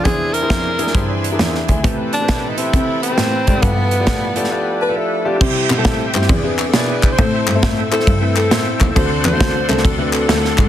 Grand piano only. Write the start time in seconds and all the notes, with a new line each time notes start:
0.05 E3 D4 E4 G#4 C5
0.42 D4 E4 G#4 C5
0.79 D4 E4 G#4 A#4
0.94 D4 E4 G#4 C5
1.32 D4 E4 G#4 A#4
1.40 C5 E5
1.69 E5 G#5
1.83 A2 C4 G4 A4 B4
2.21 C4 G4 A4 B4
2.58 C4 G4 A4 C5
2.74 C4 G4 A4 C5
3.10 C4 G4 A4 B4
3.48 C4 G4 A4 D5
3.63 G2 F4 G4 A4 B4
4.00 F4 G4 A4 D5
4.36 F4 G4 A4 D5
4.51 F4 G4 A4 D5
4.81 A5
4.89 F4 G4 A4 D5
4.96 E5
5.25 F4 G4 A4 D5
5.40 C3 G3 C4 E4 G4 C5
5.78 G3 C4 E4 G4 A4
6.14 G3 C4 E4 G4 C5
6.30 E3
6.44 C4 D4 E4 G#4 B4
6.74 B3 D4 E4 G#4 D5
7.18 A2 A3 C4 E4 A4 C5
7.55 A3 C4 E4 A4 C5
7.91 A3 C4 E4 A4 C5
8.21 A3 C4 E4 A4 B4
8.51 A3 C4 E4 A4 C5
8.95 D3 A3 C4 D4 F#4 A4
9.32 A3 C4 D4 F#4 A4
9.68 A3 C4 D4 F#4 A4
9.98 A3 C4 D4 F#4 B4
10.28 A3 C4 D4 F4 A4
10.34 F#4